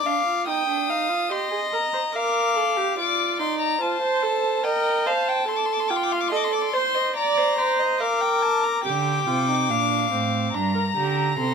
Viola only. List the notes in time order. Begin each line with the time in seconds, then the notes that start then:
0.05 D4
0.26 F4
0.47 D#4
0.67 D4
0.89 D#4
1.09 F4
1.30 G4
1.51 G#4
1.72 A#4
1.93 C5
2.14 A#4
2.56 A4
2.77 G4
2.98 F4
3.39 D#4
3.81 F4
4.01 C5
4.22 A4
4.64 A#4
5.06 C5
5.48 A4
5.90 F4
6.32 A4
6.74 C5
7.16 D5
7.58 C5
8.00 A#4
8.85 G4
9.27 F4
9.48 D#4
9.69 D4
10.11 C4
10.54 D4
10.75 A#4
10.96 G4
11.38 A4